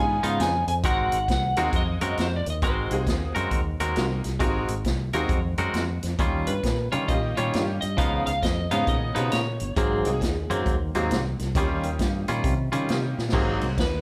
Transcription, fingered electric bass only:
Already playing: G#2
0.24 G#2
0.40 F2
0.67 F2
0.84 G#1
1.13 G#1
1.28 C2
1.57 D#2
1.73 F2
2.01 F#2
2.18 F2
2.46 D#2
2.62 G#1
2.91 C2
3.07 D#2
3.36 F#2
3.52 D#2
3.80 D#2
3.97 C2
4.25 C2
4.40 G#1
4.69 G#1
4.85 C2
5.13 D#2
5.29 F2
5.58 F#2
5.74 F2
6.03 F2
6.19 D#2
6.48 G2
6.64 A#2
6.94 C#3
7.09 A#2
7.38 A#2
7.55 G2
7.83 G2
7.98 C#2
8.27 C#2
8.42 F2
8.71 G#2
8.87 A#2
9.17 B2
9.33 A#2
9.61 G1
9.77 G#1
10.06 C2
10.22 D#2
10.50 F#2
10.66 D#2
10.95 D#2
11.11 C2
11.40 C2
11.55 D#2
11.85 D#2
11.99 G2
12.29 A#2
12.44 C3
12.74 C#3
12.90 C3
13.18 A#2
13.34 G#1
13.62 C2
13.78 D#2

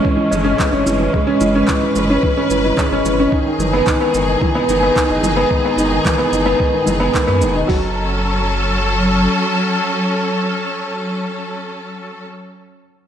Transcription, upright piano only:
Already playing: E3 G#3 C#4
0.04 E3
0.16 E3
0.31 G#3
0.44 C#4
0.59 E3
0.72 C#4
0.86 E3
0.99 E3
1.13 G#3
1.27 C#4
1.41 E3
1.55 C#4
1.69 E3
1.82 E3
1.97 G#3
2.10 C#4
2.24 E3
2.37 C#4
2.51 E3
2.65 E3
2.79 G#3
2.92 C#4
3.06 E3
3.20 C#4
3.33 D#3
3.46 D#3
3.60 E3
3.73 B3
3.87 D#3
4.01 B3
4.14 D#3
4.28 D#3
4.42 E3
4.55 B3
4.69 D#3
4.83 B3
4.96 D#3
5.09 D#3
5.22 E3
5.36 B3
5.51 D#3
5.65 B3
5.78 D#3
5.92 D#3
6.06 E3
6.18 B3
6.32 D#3
6.46 B3
6.59 D#3
6.73 D#3
6.86 E3
7.00 B3
7.14 D#3
7.27 B3
7.41 D#3
7.55 D#3
7.68 F#3

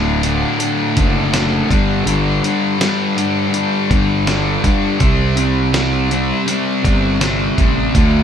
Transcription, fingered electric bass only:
Already playing: D1
0.97 F#1
1.71 G1
2.06 G1
3.90 G1
4.64 G2
5.01 C2
6.85 G1
7.58 A1
7.95 D2

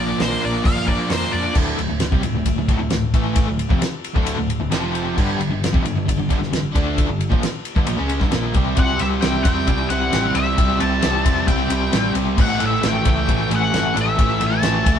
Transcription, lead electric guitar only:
0.00 D5
0.21 C5
0.45 D5
0.65 F5
0.89 D5
1.10 C5
1.32 D5
8.79 F#5
9.00 E5
9.21 G5
9.44 G5
9.90 F#5
10.35 E5
10.80 A5
11.48 G5
12.41 F#5
12.66 E5
12.88 G5
13.10 G5
13.56 F#5
14.01 E5
14.46 A5

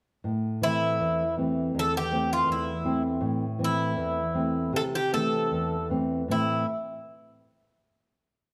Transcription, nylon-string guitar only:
0.24 A2
0.62 E3 A3 C4
1.00 E2
1.37 E3 A3 C4
1.75 E2
2.11 E3 A3 C4
2.47 E2
2.85 E3 A3 C4
3.21 A2
3.59 E3 A3 C4
3.97 E2
4.34 E3 A3 C4
4.73 C3
5.13 E3 A3 C4
5.51 E2
5.90 E3 A3 C4
6.28 A2 E3 A3 C4

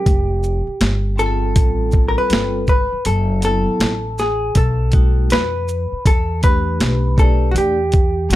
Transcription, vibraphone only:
1.16 G3 C4 F4 G#4
1.26 A4
2.28 G3 C4 F4 A4
3.41 F#3 B3 E4 A4
4.91 G3 A3 D#4 F#4
6.41 A3 D4 G4 B4
7.17 A3 D4 G4 D5
8.29 G3 A3 D4 D5

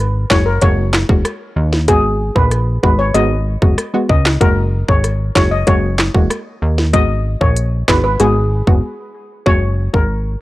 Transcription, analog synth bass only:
Already playing: G#1
0.31 F#1
0.62 F#1
1.09 E1
1.56 D#2
1.88 G#1
2.36 A#1
2.83 G#1
3.15 G#1
3.62 F#1
4.09 C#2
4.41 F#1
4.88 G#1
5.36 F#1
5.68 F#1
6.14 E1
6.62 D#2
6.94 G#1
7.41 A#1
7.89 G#1
8.20 G#1
8.67 F#1
9.46 F#1
9.94 G#1

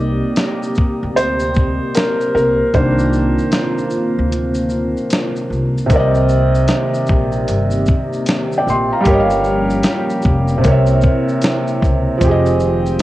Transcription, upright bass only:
Already playing: C2
1.03 D2
2.35 C2
2.74 C2
4.19 D2
5.50 C2
5.90 C2
7.10 A#1
7.48 G1
8.67 A#1
9.06 G1
10.25 F1
10.65 C2
11.82 C#2
12.21 F1

